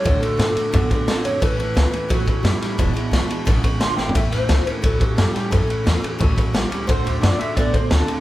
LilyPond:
<<
  \new Staff \with { instrumentName = "Clean electric guitar" } { \time 4/4 \key a \major \tempo 4 = 176 cis''8 a'2 r4 cis''8 | b'8 b'4. fis'4 e'4~ | e'2 r4 c'''8 g''8 | e''8 c''4. a'8 g'8 a'8 g'8 |
a'2 r2 | c''4 d''8 e''8 d''8 c''8 a'8 r8 | }
  \new Staff \with { instrumentName = "Steel-string acoustic guitar" } { \time 4/4 \key a \major <d a d' fis'>8 <a d' fis'>8 <d a d' fis'>8 <a d' fis'>8 <d a d' fis'>8 <a d' fis'>8 <d a d' fis'>8 <a d' fis'>8 | <a, e a cis' e'>8 <a cis' e'>8 <e a cis' e'>8 <a cis' e'>8 <a, e a cis' e'>8 <a cis' e'>8 <e a cis' e'>8 <a cis' e'>8 | <e, b, e gis d' e'>8 <e gis d' e'>8 <e gis d' e'>8 <e gis d' e'>8 <e, b, e gis d' e'>8 <e gis d' e'>8 <e gis d' e'>8 <e gis d' e'>8 | <a, e a cis' e'>8 <a cis' e'>8 <e a cis' e'>8 <a cis' e'>8 <a, e a cis' e'>8 <a cis' e'>8 <e a cis' e'>8 <a cis' e'>8 |
<a, e a cis' e'>8 <a cis' e'>8 <e a cis' e'>8 <a cis' e'>8 <a, e a cis' e'>8 <a cis' e'>8 <e a cis' e'>8 <a cis' e'>8 | <d a d' fis'>8 <a d' fis'>8 <d a d' fis'>8 <a d' fis'>8 <d a d' fis'>8 <a d' fis'>8 <d a d' fis'>8 <a d' fis'>8 | }
  \new Staff \with { instrumentName = "Clean electric guitar" } { \clef bass \time 4/4 \key a \major <d a>8 <d a>8 <d a>8 <d a>8 <d b>8 <d b>8 <d c'>8 <d c'>8 | <a, e>8 <a, e>8 <a, e>8 <a, e>8 <a, fis>8 <a, fis>8 <a, g>8 <a, g>8 | <e, b,>8 <e, b,>8 <e, b,>8 <e, b,>8 <e, cis>8 <e, cis>8 <e, d>8 <e, d>8 | <a, e>8 <a, e>8 <a, e>8 <a, e>8 <a, fis>8 <a, fis>8 <a, g>8 <a, g>8 |
<a, e>8 <a, e>8 <a, e>8 <a, e>8 <a, fis>8 <a, fis>8 <a, g>8 <a, g>8 | <d a>8 <d a>8 <d a>8 <d a>8 <d b>8 <d b>8 <d c'>8 <d c'>8 | }
  \new Staff \with { instrumentName = "Upright bass" } { \clef bass \time 4/4 \key a \major d,8 r8 a,8 r8 fis,8 r8 d,8 fis,8 | a,,8 a,,8 cis,8 r8 cis,8 e,8 fis,8 r8 | e,,8 r8 b,,8 r8 a,,8 r8 e,,8 gis,,8 | a,,8 a,,8 cis,8 r8 cis,8 e,8 fis,8 r8 |
fis,8 r8 e,8 r8 d,8 r8 a,,8 cis,8 | d,8 d,8 fis,8 r8 fis,8 a,8 d,8 r8 | }
  \new DrumStaff \with { instrumentName = "Drums" } \drummode { \time 4/4 <bd cymr>8 cymr8 <cymr sn>8 cymr8 <bd cymr>8 <bd cymr>8 <cymr sn>8 cymr8 | <bd cymr>8 cymr8 <cymr sn>8 cymr8 <bd cymr>8 <bd cymr>8 <cymr sn>8 <cymr sn>8 | <bd cymr>8 cymr8 <cymr sn>8 cymr8 <bd cymr sn>8 <bd cymr>8 \tuplet 3/2 { <cymr sn>16 r16 r16 sn16 r16 tomfh16 } | <bd cymr sn>8 <cymr sn>8 <cymr sn>8 cymr8 <bd cymr>8 <bd cymr>8 <cymr sn>8 <cymr sn>8 |
<bd cymr sn>8 cymr8 <cymr sn>8 cymr8 <bd cymr>8 <bd cymr>8 <cymr sn>8 cymr8 | <bd cymr>8 cymr8 <cymr sn>8 cymr8 <bd cymr sn>8 <bd cymr>8 <cymr sn>8 cymr8 | }
>>